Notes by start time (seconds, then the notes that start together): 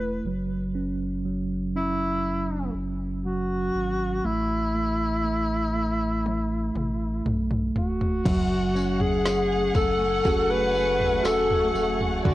Already playing: E1 A3 B4
0.24 F#1 F#3
0.75 C#4
1.25 F#3
1.76 C#4 E4
2.75 F#1
3.25 F#3 F#4
3.75 G#1
4.24 A1 A3 E4
4.75 A3
5.25 A3
5.76 A3
6.26 high tom
6.75 A1, mid tom
7.25 B1 A3, mid tom
7.51 mid tom
7.75 E1 F#4, floor tom
8.01 floor tom
8.25 F#1 F#2 F#3 A3 F#5 G#5 C#6, kick, floor tom, crash, tambourine
8.75 C#4, tambourine
9.00 G#4, floor tom
9.26 snare, tambourine
9.74 F#1 A3 A4, kick, floor tom, tambourine
10.24 F#1 C#4 F#4 G#4 A4, kick, floor tom, tambourine
10.50 B4
10.75 tambourine
11.00 floor tom
11.24 E1 C#4 F#4 A4, snare, tambourine
11.51 floor tom
11.74 E1 A3, tambourine
12.01 floor tom
12.24 D1 D3 F#4 D5, kick, floor tom